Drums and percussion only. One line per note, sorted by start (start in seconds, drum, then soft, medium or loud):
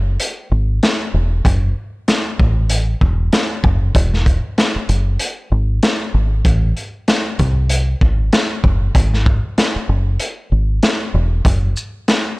0.20 closed hi-hat medium
0.83 snare loud
0.83 snare medium
0.83 closed hi-hat medium
1.45 kick loud
1.45 closed hi-hat medium
2.08 snare medium
2.08 closed hi-hat medium
2.40 kick medium
2.70 closed hi-hat medium
3.01 kick medium
3.33 snare loud
3.33 snare medium
3.33 closed hi-hat medium
3.64 kick loud
3.95 kick loud
3.95 closed hi-hat medium
4.14 snare soft
4.26 kick medium
4.26 closed hi-hat soft
4.58 snare medium
4.58 closed hi-hat medium
4.89 closed hi-hat medium
5.20 closed hi-hat loud
5.83 snare loud
5.83 snare medium
5.83 closed hi-hat medium
6.45 kick loud
6.45 closed hi-hat medium
6.77 closed hi-hat soft
7.08 snare loud
7.08 snare medium
7.08 closed hi-hat medium
7.39 kick medium
7.39 closed hi-hat medium
7.70 closed hi-hat loud
8.01 kick medium
8.33 snare loud
8.33 snare medium
8.33 closed hi-hat medium
8.64 kick loud
8.95 kick loud
8.95 closed hi-hat medium
9.14 snare soft
9.26 kick loud
9.58 snare medium
9.58 closed hi-hat medium
10.20 closed hi-hat medium
10.83 snare loud
10.83 snare medium
10.83 closed hi-hat medium
11.45 kick loud
11.45 closed hi-hat medium
11.77 shaker soft
12.08 snare loud
12.08 snare medium
12.08 closed hi-hat medium